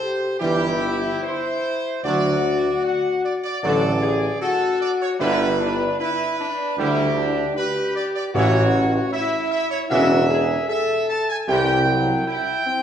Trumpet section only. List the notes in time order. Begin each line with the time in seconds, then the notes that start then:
Already playing: C5
0.39 G4
1.23 C5
2.04 D5
2.84 F#5
3.24 D5
3.44 D5
3.62 D5
4.41 A4
4.81 D5
5.02 C#5
5.20 B4
5.99 B4
6.78 G4
7.57 B4
7.96 D5
8.15 D5
8.35 C#5
9.12 E5
9.51 E5
9.71 C#5
9.90 E5
10.69 E5
11.09 A5
11.29 G#5
11.48 G5
12.27 G5